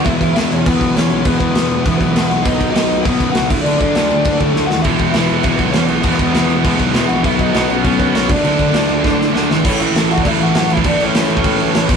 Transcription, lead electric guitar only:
\new Staff \with { instrumentName = "Lead electric guitar" } { \time 4/4 \key e \mixolydian \tempo 4 = 200 << { e''8 e''8 e''8 cis''8 b'4 cis''4 | b'8 b'2 b'8 b'8 fis''8 | dis''4 dis''4 b'4 fis''8 e''8 | d''8 d''2 a'4 fis''8 |
e''4 e''4 b'4 cis''8 b'8~ | b'8 b'2 b'4 fis''8 | e''8 dis''8 dis''8 cis''4 cis''4 d''8~ | d''2. r4 |
cis''8 e''4 fis''16. d''32 e''8 fis''8 fis''8 e''8 | d''8 cis''8 cis''2~ cis''8 r8 | } \\ { e'8 e'8 e'8 cis'8 b4 cis'4 | b8 b2 b8 b8 fis'8 | dis'4 dis'4 b4 fis'8 e'8 | d'8 d'2 a4 fis'8 |
e'4 e'4 b4 cis'8 b8~ | b8 b2 b4 fis'8 | e'8 dis'8 dis'8 cis'4 cis'4 d'8~ | d'2. r4 |
cis'8 e'4 fis'8 e'8 fis'8 fis'8 e'8 | d'8 cis'8 cis'2~ cis'8 r8 | } >> }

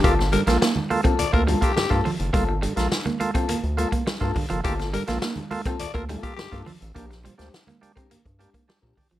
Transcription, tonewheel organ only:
\new Staff \with { instrumentName = "Tonewheel organ" } { \time 4/4 \key g \minor \tempo 4 = 104 <bes f' a'>16 r16 <g, d>16 <bes f' a'>16 r8 <bes f' a'>16 r8 <bes f' a'>16 <g, d>16 <bes f' a'>16 <g, d>16 <bes f' a'>16 <f' a'>16 r16 | <bes f' a'>16 r16 <g, d>16 <bes f' a'>16 r8 <bes f' a'>16 r8. <bes f' a'>16 r8 <bes f' a'>16 <g, d>16 <bes f' a'>16 | <bes f' a'>16 r16 <g, d>16 <bes f' a'>16 r8 <bes f' a'>16 r8 <bes f' a'>16 <g, d>16 <bes f' a'>16 <g, d>16 <bes f' a'>16 <f' a'>16 r16 | <bes d' g'>16 r16 <bes, f>16 <bes d' g'>16 r8 <bes d' g'>16 r8. <bes d' g'>16 r16 <d' g'>16 <bes, f>16 <d' g'>16 r16 | }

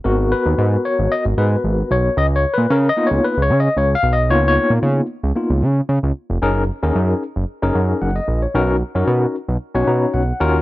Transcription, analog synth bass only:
\new Staff \with { instrumentName = "Analog synth bass" } { \clef bass \time 4/4 \key des \mixolydian \tempo 4 = 113 aes,,8. ees,16 aes,8 r16 aes,,16 r16 aes,,16 aes,8 aes,,8 ces,8 | des,8. bes,16 des8 r16 des,16 r16 des,16 des8 des,8 ces,8 | des,8. bes,16 des8 r16 des,16 r16 des,16 des8 des16 des,16 r16 f,,16 | ges,,8. ees,16 ges,8 r16 ges,,16 r16 ges,,16 ges,8 ges,,8 bes,,8 |
b,,8. fis,16 b,8 r16 b,,16 r16 b,,16 b,8 b,,8 ees,8 | }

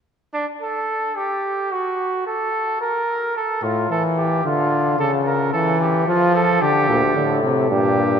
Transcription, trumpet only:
\new Staff \with { instrumentName = "Trumpet" } { \time 3/4 \key g \minor \tempo 4 = 110 r8 d'8 a'4 g'4 | fis'4 a'4 bes'4 | a'8 f'8 a'8 g'8 f'4 | a'8 bes'8 a'8 g'8 f'8 a'8 |
g'4. r8 g'4 | }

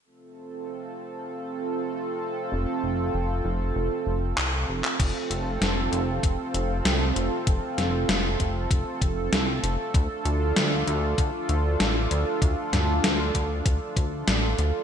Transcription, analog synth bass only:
\new Staff \with { instrumentName = "Analog synth bass" } { \clef bass \time 4/4 \key f \major \tempo 4 = 97 r1 | f,,8 f,,8 f,,8 f,,8 f,,8 f,,8 c,8 f,,8 | f,,8 f,,8 f,,8 f,,8 f,,8 f,,8 c,8 f,,8 | f,,8 f,,8 f,,8 f,,8 f,,8 f,,8 c,8 f,,8 |
d,8 d,8 d,8 d,8 d,8 d,8 a,,8 d,8 | d,8 d,8 d,8 d,8 d,8 d,8 a,,8 d,8 | }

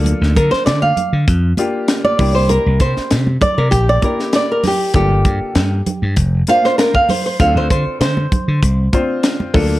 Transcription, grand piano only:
\new Staff \with { instrumentName = "Grand piano" } { \time 4/4 \key g \minor \tempo 4 = 98 <bes d' f' a'>4 r4. <bes d' f' g'>4 <bes d' e' g'>8~ | <bes d' e' g'>4 r4. <bes d' e' g'>4 r8 | <bes d' f' a'>4. r4 <bes d' f' c''>4 r8 | <c' d' f' a'>4. r4 <c' d' f' c''>4 <bes d' f' a'>8 | }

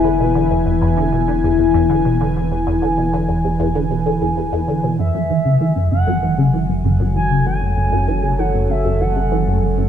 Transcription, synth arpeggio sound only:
\new Staff \with { instrumentName = "Synth arpeggio sound" } { \clef bass \time 4/4 \key e \mixolydian \tempo 4 = 97 d16 b,16 d16 e,16 e,16 e,16 d16 b,16 d16 e,16 e,16 e,16 d16 b,16 d16 e,16 | e,16 e,16 d16 b,16 d16 e,16 e,16 e,16 d16 b,16 d16 e,16 e,16 e,16 d16 b,16 | fis,16 fis,16 e16 cis16 e16 fis,16 fis,16 fis,16 e16 cis16 e16 fis,16 fis,16 fis,16 e16 cis16 | e16 fis,16 fis,16 fis,16 e16 cis16 e16 fis,16 fis,16 fis,16 e16 cis16 e16 fis,16 fis,16 fis,16 | }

